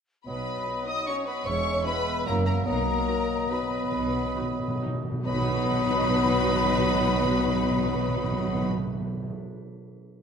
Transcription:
0.27 0.60 B1 soft
0.27 0.60 B2 soft
0.27 1.48 F#3 soft
0.27 0.83 B3 soft
0.27 0.83 B4 soft
0.27 1.48 D#5 soft
0.27 0.83 B5 medium
0.66 0.74 D#4 soft
0.66 0.75 F#4 soft
0.86 1.07 D#4 soft
0.86 1.07 D#5 medium
0.86 1.06 D#6 soft
0.86 1.08 D#6 medium
1.07 1.27 C#4 soft
1.07 1.15 D#4 soft
1.07 1.15 F#4 soft
1.07 1.27 C#5 medium
1.07 1.26 C#6 medium
1.07 1.15 C#6 medium
1.26 1.46 B3 soft
1.26 1.46 B4 soft
1.26 1.46 B5 medium
1.26 1.33 B5 soft
1.45 1.78 E1 medium
1.45 1.78 E2 medium
1.45 2.27 G#3 soft
1.45 1.85 C#4 medium
1.45 1.86 C#5 medium
1.45 2.66 E5 medium
1.45 1.85 C#6 medium
1.45 1.86 C#6 medium
1.85 2.26 B3 medium
1.85 1.93 E4 medium
1.85 1.93 G#4 medium
1.85 2.26 B4 medium
1.85 2.27 B5 medium
1.85 2.25 B5 medium
2.26 2.59 F#1 medium
2.26 2.59 F#2 medium
2.26 2.65 F#3 medium
2.26 2.46 A#3 medium
2.26 2.34 E4 soft
2.26 2.34 F#4 soft
2.26 2.45 A#4 medium
2.26 2.46 A#5 medium
2.26 2.35 A#5 medium
2.46 2.65 A#3 medium
2.46 2.65 A#4 medium
2.46 2.54 A#5 medium
2.46 2.53 A#5 medium
2.65 2.99 B1 medium
2.65 3.00 B2 medium
2.65 5.00 F#3 medium
2.65 3.49 A#3 medium
2.65 3.49 A#4 medium
2.65 5.01 D#5 medium
2.65 3.48 A#5 medium
2.65 3.49 A#5 medium
2.88 2.95 B2 soft
3.04 3.11 B2 soft
3.04 3.14 D#4 soft
3.04 3.15 F#4 soft
3.13 3.19 B2 soft
3.21 3.27 B2 soft
3.29 3.35 B2 soft
3.37 3.43 B2 soft
3.45 3.52 B2 soft
3.50 3.60 B2 soft
3.50 4.82 B3 soft
3.50 3.58 D#4 soft
3.50 3.58 F#4 soft
3.50 4.82 B4 soft
3.50 4.81 B5 medium
3.50 4.79 B5 soft
3.61 3.68 B2 soft
3.69 3.75 B2 soft
3.76 3.83 B2 soft
3.84 3.90 B2 medium
3.92 4.28 B1 soft
3.92 3.99 B2 soft
3.92 4.28 B2 medium
4.00 4.07 B2 medium
4.08 4.14 B2 medium
4.15 4.23 B2 medium
4.24 4.32 B2 medium
4.34 4.41 B2 medium
4.34 4.44 D#4 soft
4.34 4.44 F#4 soft
4.42 4.50 B2 medium
4.51 4.59 B2 medium
4.60 4.67 B2 medium
4.68 4.76 B2 medium
4.77 4.85 B2 medium
4.82 4.90 D#4 soft
4.82 4.90 F#4 soft
4.86 4.93 B2 medium
4.94 5.02 B2 medium
5.03 5.11 B2 medium
5.12 5.19 B2 medium
5.26 8.67 B1 medium
5.26 5.34 B2 medium
5.26 8.67 B2 medium
5.26 8.67 F#3 medium
5.26 8.67 B3 medium
5.26 8.67 D#4 medium
5.26 8.67 F#4 medium
5.26 8.67 B4 medium
5.26 8.67 D#5 medium
5.26 8.67 B5 medium
5.34 5.42 B2 medium
5.42 5.49 B2 medium
5.49 5.56 B2 medium
5.56 5.64 B2 medium
5.64 5.72 B2 medium
5.72 5.80 B2 medium
5.80 5.87 B2 medium
5.87 5.95 B2 medium
5.95 6.02 B2 medium
6.02 6.09 B2 medium
6.09 6.16 B2 medium
6.17 6.24 B2 medium
6.24 6.31 B2 medium
6.31 6.39 B2 medium
6.39 6.46 B2 medium
6.47 6.54 B2 medium
6.55 6.62 B2 medium
6.64 6.71 B2 medium
6.71 6.78 B2 medium
6.78 6.85 B2 medium
6.86 6.93 B2 medium
6.94 7.01 B2 medium
7.01 7.08 B2 medium
7.08 7.15 B2 medium
7.15 7.23 B2 medium
7.23 7.31 B2 medium
7.31 7.38 B2 medium
7.38 7.46 B2 medium
7.46 7.54 B2 medium
7.55 7.62 B2 medium
7.63 7.70 B2 medium
7.71 7.78 B2 medium
7.78 7.85 B2 medium
7.86 7.93 B2 medium
7.94 8.01 B2 medium
8.01 8.09 B2 medium
8.09 8.16 B2 medium
8.16 8.24 B2 medium
8.24 8.31 B2 medium
8.31 8.39 B2 medium
8.39 8.47 B2 medium
8.47 8.54 B2 medium
8.55 8.62 B2 medium
8.62 8.70 B2 medium
8.70 8.77 B2 medium
8.77 8.85 B2 medium
8.86 8.93 B2 medium
8.93 9.00 B2 medium
9.00 9.07 B2 medium
9.07 9.15 B2 medium
9.15 9.22 B2 medium
9.22 9.30 B2 medium
9.30 9.38 B2 medium

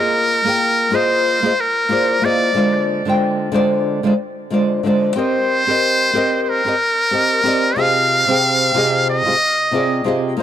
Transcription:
0.00 0.41 A#3 medium
0.00 0.42 F4 medium
0.00 0.42 G#4 medium
0.00 0.97 A#4 loud
0.00 0.43 D#5 loud
0.44 0.89 A#3 medium
0.44 0.89 F4 medium
0.44 0.90 G#4 medium
0.44 0.91 G5 loud
0.91 1.39 A#3 loud
0.91 1.39 F4 loud
0.91 1.40 G#4 loud
0.91 1.40 C5 loud
0.91 1.41 D#5 loud
0.95 1.62 C5 loud
1.43 1.51 A#3 medium
1.43 1.51 F4 medium
1.43 1.52 G#4 medium
1.43 1.52 C5 medium
1.43 1.53 D#5 loud
1.60 2.26 A#4 loud
1.89 2.19 A#3 medium
1.89 2.19 F4 medium
1.89 2.20 G#4 medium
1.89 2.20 C5 medium
1.89 2.21 D5 loud
2.22 2.52 A#3 loud
2.22 2.52 F4 medium
2.22 2.53 G#4 medium
2.22 2.53 C5 medium
2.22 2.89 D5 loud
2.22 2.54 D#5 loud
2.54 3.02 D3 medium
2.54 3.02 G#3 medium
2.54 3.03 F4 medium
2.54 3.03 C5 medium
2.54 3.04 D5 medium
3.05 3.50 D3 medium
3.05 3.50 G#3 medium
3.05 3.51 F4 medium
3.05 3.51 C5 medium
3.09 3.52 G5 loud
3.52 4.00 D3 loud
3.52 4.00 G#3 medium
3.52 4.00 F4 loud
3.52 4.01 C5 loud
3.52 4.01 D5 loud
4.03 4.12 D3 medium
4.03 4.12 G#3 medium
4.03 4.12 F4 medium
4.03 4.13 C5 medium
4.03 4.13 D5 loud
4.50 4.80 D3 medium
4.50 4.81 G#3 medium
4.50 4.81 F4 medium
4.50 4.82 C5 medium
4.50 4.82 D5 loud
4.83 5.13 D3 medium
4.83 5.14 G#3 medium
4.83 5.14 F4 medium
4.83 5.15 C5 medium
4.83 5.15 D5 loud
5.16 5.63 C4 medium
5.16 5.63 G4 medium
5.16 5.64 A#4 medium
5.16 6.43 C5 loud
5.16 5.65 D#5 medium
5.67 6.11 C4 medium
5.67 6.11 G4 medium
5.67 6.12 A#4 medium
5.67 6.13 D#5 loud
6.13 6.61 C4 loud
6.13 6.61 G4 medium
6.13 6.62 A#4 loud
6.13 6.63 D#5 loud
6.43 6.51 C5 medium
6.49 7.81 A#4 loud
6.65 6.73 C4 medium
6.65 6.73 G4 medium
6.65 6.74 A#4 medium
6.65 6.75 D#5 loud
7.11 7.41 C4 medium
7.11 7.42 G4 medium
7.11 7.42 A#4 medium
7.11 7.43 D#5 loud
7.43 7.74 C4 loud
7.43 7.74 G4 medium
7.43 7.75 D5 medium
7.43 7.76 D#5 loud
7.76 8.24 C3 medium
7.76 8.24 C4 medium
7.76 8.24 F4 medium
7.76 8.25 G4 medium
7.76 8.25 G#4 medium
7.76 8.25 D#5 medium
7.76 9.09 F5 loud
8.27 8.71 C3 medium
8.27 8.72 C4 medium
8.27 8.73 G4 medium
8.27 8.73 G#4 medium
8.27 8.73 G5 medium
8.74 9.21 C3 loud
8.74 9.22 C4 medium
8.74 9.22 F4 medium
8.74 9.23 G4 loud
8.74 9.23 G#4 loud
8.74 9.23 D#5 loud
9.10 10.09 D#5 loud
9.25 9.33 C3 medium
9.25 9.34 C4 medium
9.25 9.34 F4 medium
9.25 9.35 G4 medium
9.25 9.35 G#4 medium
9.25 9.35 D#5 medium
9.71 10.02 C3 medium
9.71 10.02 C4 medium
9.71 10.02 F4 medium
9.71 10.03 G#4 medium
9.71 10.04 D5 loud
10.04 10.34 C3 medium
10.04 10.35 C4 medium
10.04 10.35 F4 medium
10.04 10.35 G4 medium
10.04 10.36 G#4 medium
10.04 10.36 D#5 loud
10.37 10.43 A#3 medium
10.37 10.43 F4 medium

